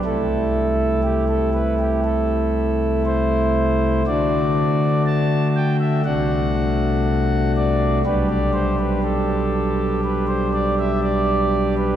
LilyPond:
<<
  \new Staff \with { instrumentName = "Pipe organ" } { \time 4/4 \key g \major \tempo 4 = 60 a'4 g'16 a'16 b'16 g'16 a'4 c''4 | d''4 a''8 g''16 e''16 fis''4. d''8 | b'16 d''16 c''16 b'16 a'4 b'16 c''16 d''16 e''16 d''8. b'16 | }
  \new Staff \with { instrumentName = "Pipe organ" } { \time 4/4 \key g \major <c, c a e'>1 | <d a d' fis'>2 <c, c a d' fis'>2 | <b,, b, g d' g'>1 | }
>>